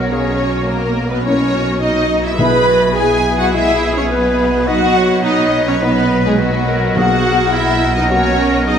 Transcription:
Already playing: B1 B2 F#3 F#4 A#4 C#5
0.10 A#3 C#4 G#4 C#5
0.42 F#4
0.68 A#3 A#4
1.11 B3 B4
1.24 A#3 C#4 E4 C#5
1.54 F#4
1.81 D#4 D#5
2.25 E4 E5
2.38 B1 B2 G#3 E4 G#4 B4 E5 B5
2.68 F#4
2.96 E4 G#4 G#5
3.39 F#4 F#5
3.53 G#3 E4 G#4 E5
3.96 C#4 C#5
4.10 B3 B4
4.66 B3 D#4 F#4 B4 D#5 F#5
4.97 C#5
5.25 D#4 D#5
5.67 C#4 C#5
5.80 B3 D#4 B4
6.25 G#3 G#4
6.39 F#3 F#4 B4
6.68 A#4
6.96 B1 B2 A#3 F#4 G#4 A#4 F#5
7.54 E4 E5
7.95 D#4 D#5
8.10 A#3 C#4 F#4 C#5
8.39 A#4
8.67 D#4 G#4 D#5

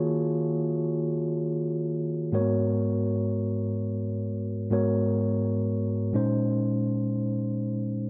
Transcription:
Already playing: D#3 A#3 F4 F#4 G#4 C#5
2.32 G#2 G#3 A#3 F#4 A#4 C#5
2.40 B3
4.70 G#2 G#3 B3 F#4 A#4 C#5
6.13 A#2 G#3 C#4 D#4 C5

